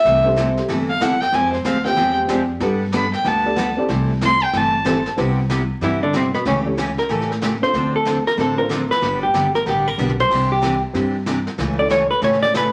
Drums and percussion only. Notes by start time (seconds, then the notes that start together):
0.06 brush sweep, snare
0.37 snare, hi-hat pedal
0.57 snare
0.69 brush sweep, snare
1.01 snare, hi-hat pedal
1.22 snare
1.33 brush sweep, snare
1.53 snare
1.65 snare, hi-hat pedal
1.85 snare
1.97 brush sweep, snare
2.29 snare, hi-hat pedal
2.60 brush sweep, snare
2.92 snare, hi-hat pedal
3.13 snare
3.25 brush sweep, snare
3.58 snare, hi-hat pedal
3.90 brush sweep, snare
4.21 snare, hi-hat pedal
4.53 brush sweep, snare
4.85 snare, hi-hat pedal
5.06 snare
5.18 brush sweep, snare
5.50 snare, hi-hat pedal
5.82 brush sweep, snare
6.14 snare, hi-hat pedal
6.34 snare
6.46 brush sweep, snare
6.78 snare, hi-hat pedal
6.98 snare
7.10 brush sweep, snare
7.21 snare
7.32 snare
7.42 snare, hi-hat pedal
7.63 snare
7.74 brush sweep, snare
8.06 snare, hi-hat pedal
8.27 snare
8.39 brush sweep, snare
8.71 snare, hi-hat pedal
8.91 snare
9.02 brush sweep, snare
9.34 snare, hi-hat pedal
9.55 snare
9.67 brush sweep, snare
9.99 hi-hat pedal, mid tom
10.09 mid tom
10.20 mid tom
10.30 brush sweep, kick, snare, crash
10.63 snare, hi-hat pedal
10.95 brush sweep, snare
11.26 snare, hi-hat pedal
11.47 snare
11.59 brush sweep, snare
11.90 snare, hi-hat pedal
12.22 brush sweep, snare
12.33 snare
12.43 snare
12.54 snare, hi-hat pedal